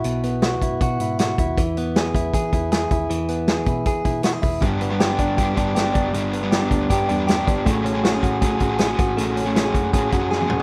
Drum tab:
HH |x-x-x-x-x-x-x-x-|x-x-x-x-x-x-x-x-|x-x-x-x-x-x-x-o-|x-x-x-x-x-x-x-x-|
SD |----o-------o---|----o-------o---|----o-------o---|----o-------o---|
T1 |----------------|----------------|----------------|----------------|
T2 |----------------|----------------|----------------|----------------|
FT |----------------|----------------|----------------|----------------|
BD |------o-o-----o-|o-----o-o-o---o-|------o-o-o---o-|o-----o-o-o---o-|

HH |x-x-x-x-x-x-x-x-|x-x-x-x-x-x-x-x-|x-x-x-x-x-x-----|
SD |----o-------o---|----o-------o---|----o-------o---|
T1 |----------------|----------------|-------------o--|
T2 |----------------|----------------|--------------o-|
FT |----------------|----------------|---------------o|
BD |------o-o-----o-|o-----o-o-o---o-|------o-o-o-----|